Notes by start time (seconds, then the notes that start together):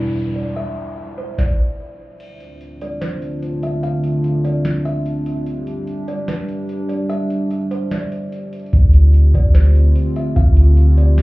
Already playing: E2 B2 G3 D4 E4 B4, noise sweep
0.36 D5
0.56 E5
1.18 C5
1.38 D5, kick, snare
2.20 D3 A3 C4 D4 F4, closed hi-hat, crash
2.40 closed hi-hat
2.61 closed hi-hat
2.81 D5, closed hi-hat
3.01 C5, snare, closed hi-hat
3.22 closed hi-hat
3.43 closed hi-hat
3.63 E5, closed hi-hat
3.83 F5, closed hi-hat
4.04 closed hi-hat
4.24 closed hi-hat
4.45 D5, closed hi-hat
4.65 snare, closed hi-hat
4.85 E5, closed hi-hat
5.06 closed hi-hat
5.26 closed hi-hat
5.46 G3 D4 G4, closed hi-hat
5.67 closed hi-hat
5.87 closed hi-hat
6.08 D5, closed hi-hat
6.28 B4, snare, closed hi-hat
6.49 closed hi-hat
6.69 closed hi-hat
6.89 D5, closed hi-hat
7.09 E5, closed hi-hat
7.30 closed hi-hat
7.51 closed hi-hat
7.71 C5, closed hi-hat
7.91 D5, snare, closed hi-hat
8.12 closed hi-hat
8.32 closed hi-hat
8.53 closed hi-hat
8.60 closed hi-hat
8.66 closed hi-hat
8.73 D2 D3 A3 C4 F4, kick, closed hi-hat
8.94 closed hi-hat
9.14 closed hi-hat
9.34 D2 D5, kick, closed hi-hat
9.54 C5, snare, closed hi-hat
9.75 closed hi-hat
9.96 closed hi-hat
10.16 E5, closed hi-hat
10.36 D2 F5, kick, closed hi-hat
10.57 closed hi-hat
10.77 closed hi-hat
10.98 D5, closed hi-hat
11.18 snare, closed hi-hat